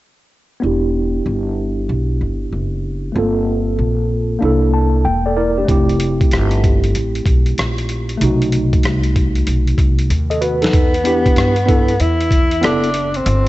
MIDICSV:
0, 0, Header, 1, 5, 480
1, 0, Start_track
1, 0, Tempo, 631579
1, 479, Time_signature, 4, 2, 24, 8
1, 10248, End_track
2, 0, Start_track
2, 0, Title_t, "Tine electric piano"
2, 0, Program_c, 0, 4
2, 456, Note_on_c, 0, 59, 58
2, 472, Note_on_c, 0, 62, 59
2, 486, Note_on_c, 0, 64, 59
2, 503, Note_on_c, 0, 67, 71
2, 2357, Note_off_c, 0, 59, 0
2, 2365, Note_off_c, 0, 62, 0
2, 2372, Note_off_c, 0, 64, 0
2, 2373, Note_on_c, 0, 57, 51
2, 2381, Note_off_c, 0, 67, 0
2, 2392, Note_on_c, 0, 60, 54
2, 2406, Note_on_c, 0, 65, 57
2, 2421, Note_on_c, 0, 58, 58
2, 2421, Note_on_c, 0, 69, 65
2, 2450, Note_off_c, 0, 57, 0
2, 3327, Note_off_c, 0, 58, 0
2, 3336, Note_off_c, 0, 60, 0
2, 3336, Note_on_c, 0, 58, 65
2, 3343, Note_off_c, 0, 65, 0
2, 3350, Note_on_c, 0, 62, 64
2, 3351, Note_off_c, 0, 69, 0
2, 3367, Note_on_c, 0, 64, 65
2, 3384, Note_on_c, 0, 69, 74
2, 3599, Note_on_c, 0, 81, 61
2, 3822, Note_off_c, 0, 81, 0
2, 3825, Note_off_c, 0, 62, 0
2, 3833, Note_off_c, 0, 64, 0
2, 3837, Note_on_c, 0, 79, 68
2, 3842, Note_off_c, 0, 69, 0
2, 3996, Note_on_c, 0, 74, 59
2, 4003, Note_on_c, 0, 69, 47
2, 4061, Note_off_c, 0, 79, 0
2, 4069, Note_off_c, 0, 74, 0
2, 4078, Note_off_c, 0, 69, 0
2, 4078, Note_on_c, 0, 70, 59
2, 4078, Note_on_c, 0, 74, 62
2, 4082, Note_on_c, 0, 64, 53
2, 4227, Note_off_c, 0, 70, 0
2, 4229, Note_off_c, 0, 64, 0
2, 4238, Note_on_c, 0, 67, 54
2, 4242, Note_on_c, 0, 62, 47
2, 4288, Note_off_c, 0, 58, 0
2, 4295, Note_on_c, 0, 57, 67
2, 4301, Note_off_c, 0, 74, 0
2, 4310, Note_on_c, 0, 60, 64
2, 4325, Note_on_c, 0, 64, 62
2, 4332, Note_off_c, 0, 67, 0
2, 4341, Note_on_c, 0, 67, 71
2, 4467, Note_off_c, 0, 62, 0
2, 6196, Note_off_c, 0, 57, 0
2, 6204, Note_off_c, 0, 60, 0
2, 6211, Note_off_c, 0, 64, 0
2, 6212, Note_on_c, 0, 57, 71
2, 6219, Note_off_c, 0, 67, 0
2, 6232, Note_on_c, 0, 48, 61
2, 6245, Note_on_c, 0, 63, 60
2, 6262, Note_on_c, 0, 66, 65
2, 7653, Note_off_c, 0, 63, 0
2, 7662, Note_off_c, 0, 66, 0
2, 7830, Note_on_c, 0, 75, 54
2, 7834, Note_on_c, 0, 69, 52
2, 7912, Note_off_c, 0, 75, 0
2, 7914, Note_off_c, 0, 69, 0
2, 7914, Note_on_c, 0, 71, 57
2, 7916, Note_on_c, 0, 66, 57
2, 8065, Note_off_c, 0, 71, 0
2, 8066, Note_off_c, 0, 66, 0
2, 8071, Note_on_c, 0, 69, 63
2, 8076, Note_on_c, 0, 63, 52
2, 8115, Note_off_c, 0, 57, 0
2, 8125, Note_off_c, 0, 48, 0
2, 8301, Note_off_c, 0, 69, 0
2, 8303, Note_off_c, 0, 63, 0
2, 8387, Note_on_c, 0, 59, 66
2, 8395, Note_on_c, 0, 62, 57
2, 8405, Note_on_c, 0, 64, 59
2, 8413, Note_on_c, 0, 67, 69
2, 8758, Note_off_c, 0, 59, 0
2, 8762, Note_off_c, 0, 62, 0
2, 8767, Note_off_c, 0, 64, 0
2, 8771, Note_off_c, 0, 67, 0
2, 8861, Note_on_c, 0, 59, 72
2, 8869, Note_on_c, 0, 62, 62
2, 8878, Note_on_c, 0, 64, 66
2, 8886, Note_on_c, 0, 69, 73
2, 9060, Note_off_c, 0, 59, 0
2, 9064, Note_off_c, 0, 62, 0
2, 9068, Note_off_c, 0, 64, 0
2, 9072, Note_off_c, 0, 69, 0
2, 9588, Note_on_c, 0, 59, 72
2, 9595, Note_on_c, 0, 62, 68
2, 9603, Note_on_c, 0, 64, 59
2, 9610, Note_on_c, 0, 69, 77
2, 9783, Note_off_c, 0, 59, 0
2, 9787, Note_off_c, 0, 62, 0
2, 9791, Note_off_c, 0, 64, 0
2, 9794, Note_off_c, 0, 69, 0
2, 10248, End_track
3, 0, Start_track
3, 0, Title_t, "Tenor saxophone"
3, 0, Program_c, 1, 66
3, 7936, Note_on_c, 1, 59, 86
3, 9129, Note_on_c, 1, 64, 112
3, 9140, Note_off_c, 1, 59, 0
3, 9608, Note_on_c, 1, 62, 86
3, 9620, Note_off_c, 1, 64, 0
3, 10008, Note_on_c, 1, 60, 84
3, 10020, Note_off_c, 1, 62, 0
3, 10248, Note_off_c, 1, 60, 0
3, 10248, End_track
4, 0, Start_track
4, 0, Title_t, "Upright bass"
4, 0, Program_c, 2, 32
4, 481, Note_on_c, 2, 28, 77
4, 936, Note_off_c, 2, 28, 0
4, 955, Note_on_c, 2, 31, 78
4, 1413, Note_off_c, 2, 31, 0
4, 1437, Note_on_c, 2, 35, 80
4, 1666, Note_off_c, 2, 35, 0
4, 1679, Note_on_c, 2, 31, 69
4, 1907, Note_off_c, 2, 31, 0
4, 1919, Note_on_c, 2, 30, 75
4, 2375, Note_off_c, 2, 30, 0
4, 2398, Note_on_c, 2, 31, 87
4, 2854, Note_off_c, 2, 31, 0
4, 2877, Note_on_c, 2, 34, 82
4, 3334, Note_off_c, 2, 34, 0
4, 3361, Note_on_c, 2, 36, 84
4, 3816, Note_off_c, 2, 36, 0
4, 3838, Note_on_c, 2, 28, 78
4, 4294, Note_off_c, 2, 28, 0
4, 4319, Note_on_c, 2, 29, 85
4, 4775, Note_off_c, 2, 29, 0
4, 4806, Note_on_c, 2, 31, 89
4, 5258, Note_off_c, 2, 31, 0
4, 5284, Note_on_c, 2, 33, 84
4, 5509, Note_off_c, 2, 33, 0
4, 5514, Note_on_c, 2, 35, 80
4, 5744, Note_off_c, 2, 35, 0
4, 5764, Note_on_c, 2, 34, 82
4, 6217, Note_off_c, 2, 34, 0
4, 6242, Note_on_c, 2, 35, 91
4, 6696, Note_off_c, 2, 35, 0
4, 6723, Note_on_c, 2, 36, 85
4, 7177, Note_off_c, 2, 36, 0
4, 7199, Note_on_c, 2, 35, 87
4, 7427, Note_off_c, 2, 35, 0
4, 7433, Note_on_c, 2, 36, 78
4, 7664, Note_off_c, 2, 36, 0
4, 7677, Note_on_c, 2, 39, 92
4, 8134, Note_off_c, 2, 39, 0
4, 8156, Note_on_c, 2, 40, 88
4, 8613, Note_off_c, 2, 40, 0
4, 8637, Note_on_c, 2, 43, 86
4, 9094, Note_off_c, 2, 43, 0
4, 9120, Note_on_c, 2, 40, 85
4, 9575, Note_off_c, 2, 40, 0
4, 9603, Note_on_c, 2, 30, 88
4, 10057, Note_off_c, 2, 30, 0
4, 10078, Note_on_c, 2, 31, 111
4, 10248, Note_off_c, 2, 31, 0
4, 10248, End_track
5, 0, Start_track
5, 0, Title_t, "Drums"
5, 4320, Note_on_c, 9, 36, 93
5, 4323, Note_on_c, 9, 42, 88
5, 4396, Note_off_c, 9, 36, 0
5, 4399, Note_off_c, 9, 42, 0
5, 4478, Note_on_c, 9, 42, 47
5, 4554, Note_off_c, 9, 42, 0
5, 4557, Note_on_c, 9, 42, 84
5, 4633, Note_off_c, 9, 42, 0
5, 4718, Note_on_c, 9, 36, 81
5, 4721, Note_on_c, 9, 42, 52
5, 4794, Note_off_c, 9, 36, 0
5, 4797, Note_off_c, 9, 42, 0
5, 4797, Note_on_c, 9, 42, 80
5, 4813, Note_on_c, 9, 37, 97
5, 4873, Note_off_c, 9, 42, 0
5, 4889, Note_off_c, 9, 37, 0
5, 4947, Note_on_c, 9, 42, 47
5, 5023, Note_off_c, 9, 42, 0
5, 5044, Note_on_c, 9, 36, 76
5, 5045, Note_on_c, 9, 42, 62
5, 5120, Note_off_c, 9, 36, 0
5, 5121, Note_off_c, 9, 42, 0
5, 5196, Note_on_c, 9, 42, 50
5, 5272, Note_off_c, 9, 42, 0
5, 5282, Note_on_c, 9, 42, 80
5, 5358, Note_off_c, 9, 42, 0
5, 5436, Note_on_c, 9, 42, 44
5, 5512, Note_off_c, 9, 42, 0
5, 5514, Note_on_c, 9, 36, 77
5, 5520, Note_on_c, 9, 42, 72
5, 5590, Note_off_c, 9, 36, 0
5, 5596, Note_off_c, 9, 42, 0
5, 5669, Note_on_c, 9, 42, 47
5, 5745, Note_off_c, 9, 42, 0
5, 5759, Note_on_c, 9, 42, 73
5, 5770, Note_on_c, 9, 37, 95
5, 5835, Note_off_c, 9, 42, 0
5, 5846, Note_off_c, 9, 37, 0
5, 5914, Note_on_c, 9, 42, 41
5, 5990, Note_off_c, 9, 42, 0
5, 5995, Note_on_c, 9, 42, 62
5, 6071, Note_off_c, 9, 42, 0
5, 6149, Note_on_c, 9, 42, 42
5, 6225, Note_off_c, 9, 42, 0
5, 6241, Note_on_c, 9, 42, 93
5, 6317, Note_off_c, 9, 42, 0
5, 6397, Note_on_c, 9, 42, 50
5, 6473, Note_off_c, 9, 42, 0
5, 6478, Note_on_c, 9, 42, 76
5, 6554, Note_off_c, 9, 42, 0
5, 6635, Note_on_c, 9, 36, 85
5, 6636, Note_on_c, 9, 42, 50
5, 6711, Note_off_c, 9, 36, 0
5, 6712, Note_off_c, 9, 42, 0
5, 6714, Note_on_c, 9, 42, 84
5, 6729, Note_on_c, 9, 37, 94
5, 6790, Note_off_c, 9, 42, 0
5, 6805, Note_off_c, 9, 37, 0
5, 6867, Note_on_c, 9, 42, 44
5, 6943, Note_off_c, 9, 42, 0
5, 6961, Note_on_c, 9, 36, 77
5, 6961, Note_on_c, 9, 42, 63
5, 7037, Note_off_c, 9, 36, 0
5, 7037, Note_off_c, 9, 42, 0
5, 7109, Note_on_c, 9, 42, 50
5, 7185, Note_off_c, 9, 42, 0
5, 7195, Note_on_c, 9, 42, 81
5, 7271, Note_off_c, 9, 42, 0
5, 7352, Note_on_c, 9, 42, 43
5, 7428, Note_off_c, 9, 42, 0
5, 7432, Note_on_c, 9, 36, 76
5, 7437, Note_on_c, 9, 42, 68
5, 7508, Note_off_c, 9, 36, 0
5, 7513, Note_off_c, 9, 42, 0
5, 7589, Note_on_c, 9, 42, 53
5, 7665, Note_off_c, 9, 42, 0
5, 7678, Note_on_c, 9, 42, 72
5, 7754, Note_off_c, 9, 42, 0
5, 7835, Note_on_c, 9, 42, 41
5, 7911, Note_off_c, 9, 42, 0
5, 7917, Note_on_c, 9, 42, 61
5, 7993, Note_off_c, 9, 42, 0
5, 8071, Note_on_c, 9, 42, 40
5, 8088, Note_on_c, 9, 38, 72
5, 8147, Note_off_c, 9, 42, 0
5, 8157, Note_on_c, 9, 36, 96
5, 8158, Note_on_c, 9, 42, 97
5, 8164, Note_off_c, 9, 38, 0
5, 8233, Note_off_c, 9, 36, 0
5, 8234, Note_off_c, 9, 42, 0
5, 8316, Note_on_c, 9, 42, 52
5, 8392, Note_off_c, 9, 42, 0
5, 8398, Note_on_c, 9, 42, 87
5, 8474, Note_off_c, 9, 42, 0
5, 8556, Note_on_c, 9, 36, 84
5, 8558, Note_on_c, 9, 42, 58
5, 8632, Note_off_c, 9, 36, 0
5, 8634, Note_off_c, 9, 42, 0
5, 8635, Note_on_c, 9, 42, 86
5, 8651, Note_on_c, 9, 37, 101
5, 8711, Note_off_c, 9, 42, 0
5, 8727, Note_off_c, 9, 37, 0
5, 8787, Note_on_c, 9, 42, 50
5, 8863, Note_off_c, 9, 42, 0
5, 8881, Note_on_c, 9, 36, 79
5, 8882, Note_on_c, 9, 42, 65
5, 8957, Note_off_c, 9, 36, 0
5, 8958, Note_off_c, 9, 42, 0
5, 9032, Note_on_c, 9, 42, 51
5, 9108, Note_off_c, 9, 42, 0
5, 9118, Note_on_c, 9, 42, 80
5, 9194, Note_off_c, 9, 42, 0
5, 9276, Note_on_c, 9, 42, 47
5, 9352, Note_off_c, 9, 42, 0
5, 9354, Note_on_c, 9, 36, 79
5, 9362, Note_on_c, 9, 42, 82
5, 9430, Note_off_c, 9, 36, 0
5, 9438, Note_off_c, 9, 42, 0
5, 9510, Note_on_c, 9, 42, 53
5, 9586, Note_off_c, 9, 42, 0
5, 9598, Note_on_c, 9, 42, 72
5, 9609, Note_on_c, 9, 37, 98
5, 9674, Note_off_c, 9, 42, 0
5, 9685, Note_off_c, 9, 37, 0
5, 9756, Note_on_c, 9, 42, 44
5, 9832, Note_off_c, 9, 42, 0
5, 9833, Note_on_c, 9, 42, 68
5, 9909, Note_off_c, 9, 42, 0
5, 9989, Note_on_c, 9, 42, 45
5, 10065, Note_off_c, 9, 42, 0
5, 10078, Note_on_c, 9, 42, 100
5, 10154, Note_off_c, 9, 42, 0
5, 10248, End_track
0, 0, End_of_file